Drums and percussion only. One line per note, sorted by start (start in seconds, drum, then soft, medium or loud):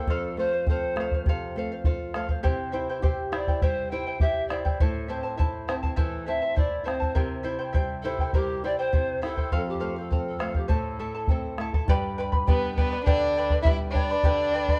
0.07 bombo low medium
0.67 bombo low medium
0.97 bombo rim soft
1.11 bombo low soft
1.26 bombo low medium
1.84 bombo low medium
2.14 bombo rim soft
2.29 bombo low medium
2.44 bombo low medium
3.03 bombo low medium
3.33 bombo rim medium
3.47 bombo low medium
3.62 bombo low medium
4.20 bombo low medium
4.50 bombo rim soft
4.65 bombo low medium
4.80 bombo low medium
5.39 bombo low medium
5.69 bombo rim soft
5.83 bombo low soft
5.97 bombo low medium
6.57 bombo low medium
6.88 bombo rim soft
7.02 bombo low soft
7.15 bombo low medium
7.74 bombo low medium
8.18 bombo low soft
8.33 bombo low medium
8.93 bombo low medium
9.23 bombo rim soft
9.37 bombo low soft
9.52 bombo low soft
10.11 bombo low medium
10.40 bombo rim soft
10.54 bombo low soft
10.69 bombo low medium
11.27 bombo low medium
11.58 bombo rim soft
11.73 bombo low medium
11.88 bombo low medium
12.32 bombo low medium
12.48 bombo low medium
12.77 bombo low medium
13.07 bombo low medium
13.50 bombo low medium
13.65 bombo low medium
13.95 bombo low medium
14.23 bombo low medium
14.68 bombo low medium